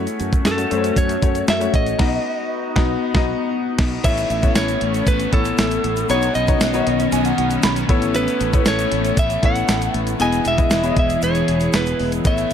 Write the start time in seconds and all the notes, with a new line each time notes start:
Already playing: A3 C#4 F#4 C#5
0.07 closed hi-hat, shaker
0.20 F#2, closed hi-hat, shaker
0.33 kick, closed hi-hat, shaker
0.45 F#2 A4, snare, closed hi-hat, shaker
0.58 A3 C#4 F#4 A4, closed hi-hat, shaker
0.70 F#2 A3 C#4 F#4 C5, closed hi-hat, shaker
0.78 C#5
0.84 closed hi-hat, shaker
0.96 F#2 C#5, kick, closed hi-hat, shaker
1.09 closed hi-hat, shaker
1.22 F#2 A3 C#4 F#4 C#5, kick, closed hi-hat, shaker
1.35 closed hi-hat, shaker
1.48 F#2 E5, snare, closed hi-hat, shaker
1.60 A3 C#4 F#4 C#5, closed hi-hat, shaker
1.74 A1 D#5, kick, closed hi-hat, shaker
1.86 closed hi-hat, shaker
1.98 B1 B3 D#4 F#4 D#5, kick, snare, crash
2.76 B1 B3 D#4 F#4, kick, snare
3.14 B1 B3 D#4 F#4 D#5, kick, snare
3.79 B1, kick, snare, crash
4.04 A1 A2 E3 A3 B3 C#4 E4 A4 C#5 E5, kick, closed hi-hat, crash, shaker
4.17 closed hi-hat, shaker
4.30 A1, closed hi-hat, shaker
4.43 B3 E4 A4 C#5, kick, closed hi-hat, shaker
4.55 A1 A2 E3 A3 C#5, snare, closed hi-hat, tambourine, shaker
4.68 closed hi-hat, shaker
4.81 A1, closed hi-hat
4.94 closed hi-hat, shaker
5.05 A1 A2 B4, kick, closed hi-hat, shaker
5.09 E3 A3
5.20 closed hi-hat, shaker
5.32 A1 B3 E4 A4 C#5, kick, closed hi-hat
5.45 closed hi-hat, shaker
5.58 A1, snare, closed hi-hat, tambourine, shaker
5.71 closed hi-hat, shaker
5.84 A1, closed hi-hat
5.96 closed hi-hat, shaker
6.09 B1 B2 D#3 F#3 B3 C#4 D#4 F#4 C#5, closed hi-hat, shaker
6.22 closed hi-hat, shaker
6.35 B1 D#5, closed hi-hat, shaker
6.48 B3 D#4 F#4 C#5, kick, closed hi-hat, shaker
6.60 B1 B2 F#3 B3, snare, closed hi-hat, tambourine, shaker
6.73 B3 D#4 F#4 C#5, closed hi-hat, shaker
6.87 B1 F#5, closed hi-hat
6.99 closed hi-hat, shaker
7.12 B1 B2 F#3 B3 G#5, closed hi-hat, shaker
7.25 F#5, closed hi-hat, shaker
7.38 B1 F#5, closed hi-hat
7.51 closed hi-hat, shaker
7.63 B1 B5, snare, closed hi-hat, tambourine, shaker
7.76 closed hi-hat, shaker
7.89 A1 A2 E3 A3 B3 E4 A4 C#5, kick, closed hi-hat
8.02 closed hi-hat, shaker
8.15 B4, closed hi-hat, shaker
8.28 closed hi-hat, shaker
8.40 A1, closed hi-hat, shaker
8.53 B3 E4 A4 C#5, kick, closed hi-hat, shaker
8.66 A1 A2 E3 A3 C#5, snare, closed hi-hat, tambourine, shaker
8.79 closed hi-hat, shaker
8.92 A1, closed hi-hat
9.05 closed hi-hat, shaker
9.15 A1 A2 E3 E5, kick, closed hi-hat, shaker
9.23 A3
9.30 closed hi-hat, shaker
9.42 A1 B3 E4 A4 C#5 F#5, kick, closed hi-hat
9.56 closed hi-hat, shaker
9.68 A1, snare, closed hi-hat, tambourine, shaker
9.81 closed hi-hat, shaker
9.94 A1, closed hi-hat
10.07 closed hi-hat, shaker
10.19 E1 E2 B2 E3 B3 E4 G#4 D#5 G#5, closed hi-hat, shaker
10.32 closed hi-hat, shaker
10.45 E1 E5, closed hi-hat, shaker
10.58 B3 E4 G#4 D#5, kick, closed hi-hat, shaker
10.70 E1 E2 B2 E3, snare, closed hi-hat, tambourine, shaker
10.83 B3 E4 G#4 C#5, closed hi-hat, shaker
10.90 D#5
10.96 E1 E5, kick, closed hi-hat
11.10 closed hi-hat, shaker
11.21 E1 E2 C#5, closed hi-hat, shaker
11.25 B2 E3
11.35 closed hi-hat, shaker
11.48 E1, closed hi-hat
11.60 closed hi-hat, shaker
11.73 E1 B4, snare, closed hi-hat, tambourine, shaker
11.86 closed hi-hat, shaker
11.99 E1, open hi-hat
12.12 closed hi-hat, shaker
12.24 A1 A2 E3 A3 B3 C#4 E4 A4 C#5 E5, kick, closed hi-hat, shaker
12.38 closed hi-hat, shaker